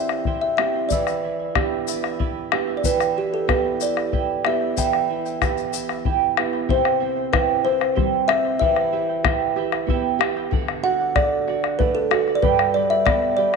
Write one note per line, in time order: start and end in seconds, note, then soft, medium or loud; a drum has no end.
0.00 0.86 E3 medium
0.00 0.23 C4 soft
0.00 0.24 E4 soft
0.00 0.24 G4 soft
0.00 0.10 C5 medium
0.00 0.43 G5 medium
0.09 0.26 E4 soft
0.09 0.26 C5 soft
0.09 0.26 G5 soft
0.09 bombo rim medium
0.25 0.58 E4 medium
0.25 0.58 G4 medium
0.25 0.58 C5 medium
0.25 0.57 E5 medium
0.25 0.59 G5 medium
0.25 bombo low medium
0.41 0.56 E5 medium
0.57 0.90 C4 soft
0.57 0.90 E4 soft
0.57 0.75 E4 medium
0.57 0.90 G4 medium
0.57 0.74 C5 medium
0.57 0.88 E5 medium
0.57 0.74 E5 medium
0.57 0.74 G5 medium
0.57 bombo rim medium
0.75 0.91 E4 soft
0.75 0.91 C5 soft
0.75 0.91 G5 soft
0.89 2.80 E3 medium
0.89 1.23 E4 medium
0.89 1.23 G4 medium
0.89 1.23 B4 medium
0.89 2.47 D5 medium
0.89 1.22 D5 medium
0.89 1.24 E5 medium
0.89 bombo low medium
0.89 shaker medium
1.07 bombo rim soft
1.07 shaker soft
1.23 1.39 E4 medium
1.23 1.39 B4 medium
1.23 1.39 D5 soft
1.23 1.38 E5 medium
1.39 1.54 E4 soft
1.39 1.55 B4 soft
1.39 1.55 E5 soft
1.55 2.18 B3 soft
1.55 2.18 D4 soft
1.55 1.87 E4 medium
1.55 1.87 G4 medium
1.55 2.18 G4 soft
1.55 1.88 B4 medium
1.55 1.87 D5 medium
1.55 1.88 E5 medium
1.55 bombo rim medium
1.55 bombo low medium
1.88 2.03 E4 medium
1.88 2.02 B4 medium
1.88 2.04 D5 medium
1.88 2.01 E5 medium
1.88 bombo rim soft
1.88 shaker medium
2.02 2.18 E4 soft
2.02 2.19 B4 soft
2.02 2.19 E5 soft
2.02 bombo rim medium
2.19 2.51 E4 medium
2.19 2.52 G4 medium
2.19 2.51 B4 medium
2.19 2.50 D5 medium
2.19 2.52 E5 medium
2.19 bombo low medium
2.51 2.83 B3 medium
2.51 2.83 D4 soft
2.51 2.68 E4 medium
2.51 2.84 G4 medium
2.51 2.67 B4 medium
2.51 2.68 D5 medium
2.51 2.66 E5 medium
2.51 bombo rim medium
2.67 2.84 E4 soft
2.67 2.84 B4 soft
2.67 2.83 E5 soft
2.77 2.84 D5 medium
2.84 4.73 E3 medium
2.84 3.15 E4 medium
2.84 3.16 G4 medium
2.84 3.16 B4 medium
2.84 3.18 B4 medium
2.84 3.15 E5 medium
2.84 3.16 G5 medium
2.84 bombo low medium
2.84 shaker medium
3.00 bombo rim medium
3.00 shaker soft
3.16 3.32 E4 medium
3.16 3.32 G4 medium
3.16 3.32 B4 medium
3.16 3.32 E5 medium
3.16 3.32 G5 medium
3.33 3.48 E4 soft
3.33 3.48 A4 medium
3.33 3.48 B4 soft
3.33 3.48 G5 soft
3.48 4.10 B3 soft
3.48 4.11 E4 soft
3.48 3.79 E4 medium
3.48 3.81 G4 medium
3.48 4.11 G4 soft
3.48 3.80 B4 medium
3.48 3.79 B4 medium
3.48 3.79 E5 medium
3.48 3.80 G5 medium
3.48 bombo rim medium
3.48 bombo low medium
3.80 3.97 E4 medium
3.80 3.96 B4 medium
3.80 4.42 D5 medium
3.80 3.96 E5 medium
3.80 3.95 G5 medium
3.80 bombo rim soft
3.80 shaker medium
3.97 4.12 E4 soft
3.97 4.12 B4 soft
3.97 4.12 G5 soft
3.97 bombo rim medium
4.12 4.44 E4 medium
4.12 4.45 G4 medium
4.12 4.44 B4 medium
4.12 4.43 E5 medium
4.12 4.45 G5 medium
4.12 bombo low medium
4.44 5.07 B3 soft
4.44 4.61 E4 medium
4.44 5.08 E4 soft
4.44 5.08 G4 medium
4.44 4.61 B4 soft
4.44 4.61 E5 soft
4.44 4.61 E5 medium
4.44 4.60 G5 soft
4.44 bombo rim medium
4.61 4.76 E4 soft
4.61 4.76 B4 soft
4.61 4.76 G5 soft
4.77 6.66 E3 medium
4.77 5.08 E4 medium
4.77 5.09 G4 medium
4.77 5.09 B4 medium
4.77 5.08 E5 medium
4.77 5.09 G5 medium
4.77 6.34 G5 medium
4.77 bombo rim soft
4.77 bombo low medium
4.77 shaker medium
4.93 bombo rim soft
5.09 5.25 E4 medium
5.09 5.25 B4 medium
5.09 5.25 E5 medium
5.09 5.24 G5 medium
5.25 5.41 E4 soft
5.25 5.41 B4 soft
5.25 5.41 G5 soft
5.25 shaker soft
5.41 6.04 B3 soft
5.41 6.03 E4 soft
5.41 5.72 E4 medium
5.41 5.73 G4 medium
5.41 6.04 G4 soft
5.41 5.72 B4 medium
5.41 5.71 E5 medium
5.41 5.73 G5 medium
5.41 bombo rim medium
5.41 bombo low medium
5.41 shaker soft
5.58 shaker soft
5.73 5.89 E4 medium
5.73 5.88 B4 medium
5.73 5.89 E5 medium
5.73 5.87 G5 medium
5.73 bombo rim soft
5.73 shaker medium
5.89 6.04 E4 soft
5.89 6.05 B4 soft
5.89 6.05 G5 soft
5.89 bombo rim soft
6.05 6.36 E4 medium
6.05 6.37 G4 medium
6.05 6.37 B4 medium
6.05 6.36 E5 medium
6.05 6.37 G5 medium
6.05 bombo low medium
6.37 6.68 B3 soft
6.37 6.53 E4 medium
6.37 6.69 E4 soft
6.37 6.69 G4 soft
6.37 6.53 B4 medium
6.37 6.53 E5 medium
6.37 6.52 G5 medium
6.37 bombo rim medium
6.53 6.68 E4 soft
6.53 6.69 B4 soft
6.53 6.69 G5 medium
6.53 bombo rim soft
6.69 8.57 C3 medium
6.69 6.99 E4 medium
6.69 7.01 G4 medium
6.69 7.00 C5 medium
6.69 7.30 C5 medium
6.69 6.99 E5 medium
6.69 7.00 G5 medium
6.69 bombo low medium
6.85 bombo rim medium
7.00 7.33 C4 soft
7.00 7.16 E4 medium
7.00 7.16 C5 medium
7.00 7.17 E5 medium
7.00 7.15 G5 medium
7.16 7.32 E4 soft
7.16 7.33 C5 soft
7.16 7.32 G5 soft
7.33 7.63 E4 medium
7.33 7.64 E4 medium
7.33 7.65 G4 medium
7.33 7.63 B4 medium
7.33 7.63 E5 medium
7.33 7.64 G5 medium
7.33 bombo rim medium
7.33 bombo low medium
7.64 7.96 C4 medium
7.64 7.80 E4 medium
7.64 8.25 C5 medium
7.64 7.80 C5 medium
7.64 7.81 E5 medium
7.64 7.79 G5 medium
7.64 bombo rim soft
7.80 7.95 E4 soft
7.80 7.95 C5 soft
7.80 7.95 G5 soft
7.80 bombo rim medium
7.95 8.28 G3 medium
7.95 8.27 E4 medium
7.95 8.28 G4 medium
7.95 8.28 C5 medium
7.95 8.27 E5 medium
7.95 8.29 G5 medium
7.95 bombo rim soft
7.95 bombo low medium
8.28 8.60 C4 medium
8.28 8.45 E4 medium
8.28 8.44 C5 medium
8.28 8.58 E5 medium
8.28 8.45 E5 medium
8.28 8.43 G5 medium
8.28 bombo rim medium
8.44 8.60 E4 soft
8.44 8.61 C5 soft
8.44 8.61 G5 soft
8.44 bombo rim soft
8.59 10.48 E3 medium
8.59 8.92 E4 medium
8.59 8.93 G4 medium
8.59 8.92 B4 medium
8.59 9.84 E5 medium
8.59 8.91 E5 medium
8.59 8.92 G5 medium
8.59 bombo low medium
8.76 bombo rim soft
8.92 9.09 E4 medium
8.92 9.23 G4 soft
8.92 9.08 B4 medium
8.92 9.09 E5 medium
8.92 9.08 G5 medium
9.09 9.24 E4 soft
9.09 9.24 B4 soft
9.09 9.24 G5 soft
9.24 9.56 E4 medium
9.24 9.57 G4 medium
9.24 9.55 B4 soft
9.24 9.57 B4 medium
9.24 9.56 E5 medium
9.24 9.57 G5 medium
9.24 bombo rim medium
9.24 bombo low medium
9.56 9.73 E4 medium
9.56 9.87 G4 soft
9.56 9.73 B4 medium
9.56 9.73 E5 medium
9.56 9.72 G5 medium
9.56 bombo rim soft
9.72 9.88 E4 soft
9.72 9.89 B4 soft
9.72 9.89 G5 soft
9.72 bombo rim medium
9.86 10.19 B3 medium
9.86 10.20 E4 medium
9.86 10.21 G4 medium
9.86 10.21 B4 medium
9.86 10.20 E5 medium
9.86 10.21 G5 medium
9.86 bombo rim soft
9.86 bombo low medium
10.19 10.37 E4 medium
10.19 10.51 G4 medium
10.19 10.36 B4 medium
10.19 10.37 E5 medium
10.19 10.36 G5 medium
10.19 bombo rim medium
10.37 10.53 E4 soft
10.37 10.52 B4 medium
10.37 10.53 G5 medium
10.37 bombo rim soft
10.51 12.38 D3 medium
10.51 10.83 A4 medium
10.51 10.83 D5 medium
10.51 10.84 F#5 medium
10.51 bombo low medium
10.68 bombo rim medium
10.83 11.14 F#4 soft
10.83 11.00 A4 medium
10.83 11.00 D5 medium
10.83 11.14 F#5 medium
10.83 10.99 F#5 medium
11.00 11.15 D5 soft
11.00 11.16 F#5 medium
11.15 11.46 A3 soft
11.15 11.47 A4 medium
11.15 11.81 D5 medium
11.15 11.48 D5 medium
11.15 11.48 F#5 medium
11.15 bombo rim medium
11.15 bombo low medium
11.47 11.78 F#4 soft
11.47 11.64 A4 medium
11.47 11.64 D5 medium
11.47 11.63 F#5 medium
11.47 bombo rim soft
11.64 11.79 D5 soft
11.64 11.79 F#5 soft
11.64 bombo rim medium
11.79 12.10 A3 medium
11.79 12.10 A4 medium
11.79 11.94 B4 medium
11.79 12.11 D5 medium
11.79 12.12 F#5 medium
11.79 bombo rim soft
11.79 bombo low medium
11.95 12.10 A4 medium
12.11 12.42 F#4 medium
12.11 12.34 A4 medium
12.11 12.27 A4 medium
12.11 12.28 D5 medium
12.11 12.26 F#5 medium
12.11 bombo rim medium
12.27 12.43 D5 soft
12.27 12.43 F#5 soft
12.27 bombo rim soft
12.35 12.43 D5 medium
12.42 13.56 G2 medium
12.42 12.75 G4 medium
12.42 12.75 B4 medium
12.42 12.74 B4 medium
12.42 12.75 D5 medium
12.42 12.73 G5 medium
12.42 12.75 B5 medium
12.42 bombo rim soft
12.42 bombo low medium
12.59 bombo rim medium
12.74 13.05 G3 soft
12.74 12.91 B4 medium
12.74 12.91 D5 medium
12.74 12.90 D5 medium
12.74 12.90 G5 medium
12.74 12.89 B5 medium
12.90 13.06 B4 soft
12.90 13.06 D5 soft
12.90 12.97 E5 medium
12.90 13.06 B5 soft
12.90 bombo rim soft
13.06 13.37 B3 medium
13.06 13.38 G4 medium
13.06 13.37 B4 medium
13.06 13.35 D5 medium
13.06 13.38 D5 medium
13.06 13.37 G5 medium
13.06 13.38 B5 medium
13.06 bombo rim medium
13.06 bombo low medium
13.22 bombo rim soft
13.37 13.56 G3 medium
13.37 13.54 B4 medium
13.37 13.56 D5 medium
13.37 13.54 D5 medium
13.37 13.54 G5 medium
13.37 13.53 B5 medium